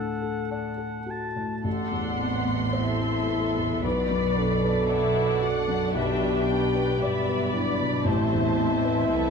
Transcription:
0.00 1.62 D2 soft
0.00 0.11 A2 soft
0.00 0.39 D4 soft
0.00 1.05 A4 soft
0.00 0.50 F#5 soft
0.00 0.49 A5 soft
0.22 0.68 A4 soft
0.50 0.97 D5 soft
0.50 1.12 F#5 soft
0.50 1.07 A5 soft
0.78 1.25 A4 soft
1.06 1.53 F#4 soft
1.06 1.64 A5 soft
1.11 1.67 A5 soft
1.36 1.65 A2 soft
1.64 3.80 A1 soft
1.64 3.81 A2 soft
1.64 2.72 D4 soft
1.64 2.17 A4 soft
1.64 2.72 F#5 soft
1.64 3.81 C6 soft
1.91 2.36 E2 soft
2.19 2.76 B3 soft
2.19 2.64 C4 soft
2.45 2.90 B3 soft
2.73 3.30 C4 medium
2.73 3.80 E4 medium
2.73 3.84 A4 soft
2.73 3.18 C5 soft
2.73 3.84 E5 soft
3.01 3.46 B3 soft
3.30 4.90 B3 soft
3.30 3.73 A4 soft
3.57 3.84 E2 soft
3.83 5.92 B1 soft
3.83 5.94 B1 medium
3.83 5.94 B2 soft
3.83 4.38 B4 medium
3.83 4.86 D5 medium
3.83 4.89 D5 soft
3.83 5.94 D5 soft
3.83 4.89 B5 soft
4.10 4.53 F#2 soft
4.36 4.79 D4 soft
4.36 5.96 A4 medium
4.64 5.06 B4 soft
4.89 5.43 E4 medium
4.89 5.32 D5 soft
4.89 5.94 D5 medium
4.89 5.43 E5 medium
4.89 5.96 F#5 soft
5.16 5.59 B4 soft
5.41 7.02 D4 medium
5.41 5.85 F#4 soft
5.41 5.96 F#5 medium
5.68 5.95 F#2 soft
5.93 7.00 B1 medium
5.93 8.03 B1 soft
5.93 7.00 B2 soft
5.93 7.51 G4 medium
5.93 6.47 B4 soft
5.93 8.03 D5 soft
5.93 6.47 E5 medium
5.93 7.02 G5 soft
6.22 6.65 B2 soft
6.47 6.91 D4 soft
6.47 7.01 B4 medium
6.47 7.02 G5 medium
6.75 7.18 B4 soft
7.01 8.07 G1 soft
7.01 8.07 G2 medium
7.01 8.05 B3 medium
7.01 8.07 D5 medium
7.01 7.45 D5 soft
7.01 7.54 E5 medium
7.01 7.52 B5 medium
7.29 7.71 B4 soft
7.53 8.06 D4 medium
7.53 7.96 E4 soft
7.53 8.06 D5 medium
7.53 8.05 B5 medium
7.80 8.07 B2 soft
8.05 9.30 A1 medium
8.05 9.11 A1 medium
8.05 9.11 A2 medium
8.05 9.30 C4 soft
8.05 9.30 E4 medium
8.05 9.11 C5 medium
8.05 9.11 C5 soft
8.05 9.30 E5 medium
8.05 9.09 A5 medium
8.32 8.74 E2 soft
8.57 9.00 C4 soft
8.84 9.27 B4 soft
9.08 9.30 C2 medium
9.08 9.30 C4 soft
9.08 9.30 A4 medium
9.08 9.30 B4 medium
9.08 9.30 A5 medium

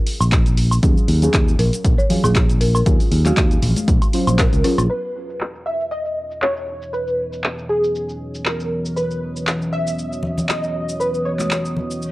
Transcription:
0.00 0.80 F#3 medium
0.00 0.80 C#4 medium
0.00 0.80 F4 medium
0.00 0.80 G#4 loud
0.07 open hi-hat loud
0.20 0.78 A#1 medium
0.20 cabasa medium
0.20 high woodblock medium
0.32 kick loud
0.32 clap loud
0.32 closed hi-hat medium
0.32 cabasa medium
0.46 closed hi-hat soft
0.46 cabasa soft
0.57 open hi-hat loud
0.71 cabasa medium
0.71 high woodblock medium
0.82 0.93 D#2 medium
0.82 1.19 F#3 medium
0.82 1.19 C#4 medium
0.82 1.19 F4 medium
0.82 1.19 G#4 loud
0.82 kick loud
0.82 closed hi-hat medium
0.82 cabasa medium
0.97 cabasa soft
1.08 1.27 D#2 medium
1.08 open hi-hat medium
1.22 2.07 F#3 loud
1.22 2.07 C#4 medium
1.22 2.07 F4 medium
1.22 2.08 G#4 loud
1.22 closed hi-hat medium
1.22 cabasa medium
1.34 1.53 D#2 medium
1.34 kick loud
1.34 clap loud
1.34 closed hi-hat medium
1.34 cabasa medium
1.48 cabasa soft
1.59 1.69 A#1 loud
1.59 1.74 A#4 medium
1.59 open hi-hat medium
1.73 closed hi-hat medium
1.73 cabasa medium
1.84 1.95 A#1 loud
1.84 kick loud
1.84 closed hi-hat medium
1.84 cabasa medium
1.98 2.11 C#5 medium
1.98 cabasa soft
2.09 2.83 F#3 medium
2.09 2.83 C#4 medium
2.09 2.84 F4 medium
2.09 2.84 G#4 loud
2.09 open hi-hat loud
2.09 low conga medium
2.24 2.81 A#1 medium
2.24 2.36 G#4 medium
2.24 low conga medium
2.24 cabasa medium
2.24 high woodblock medium
2.35 kick loud
2.35 clap loud
2.35 closed hi-hat medium
2.35 cabasa medium
2.49 closed hi-hat soft
2.49 cabasa soft
2.61 2.70 A#4 medium
2.61 open hi-hat loud
2.75 2.82 A#4 medium
2.75 cabasa medium
2.75 high woodblock medium
2.86 2.96 D#2 medium
2.86 3.22 F#3 medium
2.86 3.22 C#4 medium
2.86 3.22 F4 medium
2.86 3.22 G#4 medium
2.86 kick loud
2.86 closed hi-hat medium
2.86 cabasa medium
3.00 open hi-hat medium
3.00 cabasa soft
3.12 3.31 D#2 loud
3.12 open hi-hat loud
3.25 4.11 F#3 medium
3.25 4.11 C#4 medium
3.25 3.76 F#4 medium
3.25 4.11 G#4 loud
3.25 4.11 F5 medium
3.25 clap soft
3.25 closed hi-hat medium
3.25 high conga medium
3.25 cabasa medium
3.37 3.56 D#2 medium
3.37 kick loud
3.37 clap loud
3.37 closed hi-hat medium
3.37 cabasa medium
3.51 closed hi-hat soft
3.51 cabasa soft
3.62 3.73 A#1 loud
3.62 open hi-hat loud
3.62 low conga medium
3.76 closed hi-hat medium
3.76 high conga medium
3.76 cabasa medium
3.88 3.98 A#1 loud
3.88 kick loud
3.88 closed hi-hat medium
3.88 cabasa medium
4.02 closed hi-hat soft
4.02 cabasa soft
4.02 high woodblock medium
4.13 4.61 F#3 medium
4.13 4.61 C#4 medium
4.13 4.62 F4 medium
4.13 4.62 C5 loud
4.13 open hi-hat loud
4.27 4.52 A#1 medium
4.27 closed hi-hat soft
4.27 cabasa medium
4.27 high woodblock medium
4.39 4.91 A#4 medium
4.39 kick loud
4.39 clap loud
4.39 closed hi-hat medium
4.39 cabasa medium
4.53 4.61 C#2 medium
4.53 closed hi-hat soft
4.53 cabasa soft
4.64 4.87 F#3 medium
4.64 4.87 C#4 medium
4.64 4.87 F4 medium
4.64 4.87 G#4 loud
4.64 cross-stick medium
4.64 open hi-hat loud
4.78 4.87 A#1 medium
4.78 cross-stick medium
4.78 closed hi-hat soft
4.78 cabasa medium
4.78 high woodblock medium
4.89 12.12 E3 medium
4.89 12.12 B3 medium
4.89 12.12 F#4 medium
4.89 5.68 B4 medium
4.89 12.12 C#5 medium
4.89 8.92 D#5 medium
4.89 crash medium
4.89 cabasa soft
5.04 cabasa soft
5.30 cabasa medium
5.40 clap loud
5.40 cabasa soft
5.55 cabasa soft
5.66 5.90 E5 loud
5.80 cabasa medium
5.91 6.39 D#5 loud
5.91 cabasa soft
6.06 cabasa soft
6.31 cabasa medium
6.42 6.94 C#5 medium
6.42 clap loud
6.42 cabasa soft
6.57 cabasa soft
6.82 cabasa medium
6.93 7.40 B4 medium
6.93 cabasa soft
7.08 cabasa soft
7.33 cabasa medium
7.44 clap loud
7.44 cabasa soft
7.58 cabasa soft
7.69 8.48 G#4 medium
7.84 cabasa medium
7.95 cabasa soft
8.09 cabasa soft
8.35 cabasa medium
8.46 8.98 A#4 medium
8.46 clap loud
8.46 cabasa soft
8.60 cabasa soft
8.86 cabasa medium
8.96 9.69 B4 medium
8.96 12.12 D#6 medium
8.96 cabasa soft
9.11 cabasa soft
9.36 cabasa medium
9.47 clap loud
9.47 cabasa soft
9.62 cabasa soft
9.73 10.51 E5 loud
9.87 cabasa medium
9.99 cabasa soft
10.13 cabasa soft
10.23 low conga medium
10.38 low conga medium
10.38 cabasa medium
10.49 11.01 D#5 loud
10.49 clap loud
10.49 cabasa soft
10.64 cabasa soft
10.89 cabasa medium
11.00 11.23 B4 medium
11.00 cabasa soft
11.14 cabasa soft
11.25 11.97 C#5 medium
11.39 clap soft
11.39 high conga medium
11.39 cabasa medium
11.51 clap loud
11.51 cabasa soft
11.65 cabasa soft
11.76 low conga medium
11.91 cabasa medium
12.01 reverse cymbal medium
12.01 cabasa soft

